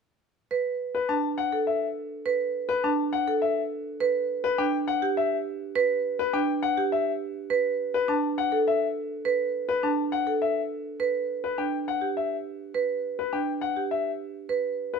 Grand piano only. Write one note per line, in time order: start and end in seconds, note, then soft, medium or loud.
0.95 1.14 B4 medium
1.09 1.28 A5 medium
1.38 1.57 F#5 medium
1.67 1.86 E5 soft
2.69 2.88 B4 medium
2.84 3.03 A5 medium
3.13 3.32 F#5 medium
3.42 3.61 E5 medium
4.44 4.63 B4 medium
4.58 4.78 G5 medium
4.88 5.07 F#5 medium
5.17 5.36 E5 medium
6.19 6.38 B4 medium
6.33 6.53 G5 medium
6.63 6.82 F#5 medium
6.92 7.11 E5 medium
7.94 8.13 B4 medium
8.09 8.28 A5 medium
8.38 8.57 F#5 medium
8.68 8.86 E5 medium
9.69 9.88 B4 medium
9.83 10.02 A5 soft
10.12 10.31 F#5 medium
10.42 10.60 E5 medium
11.44 11.62 B4 medium
11.58 11.77 G5 soft
11.88 12.06 F#5 medium
12.17 12.35 E5 soft
13.19 13.37 B4 medium
13.33 13.52 G5 soft
13.61 13.81 F#5 medium
13.91 14.10 E5 soft
14.94 14.99 B4 medium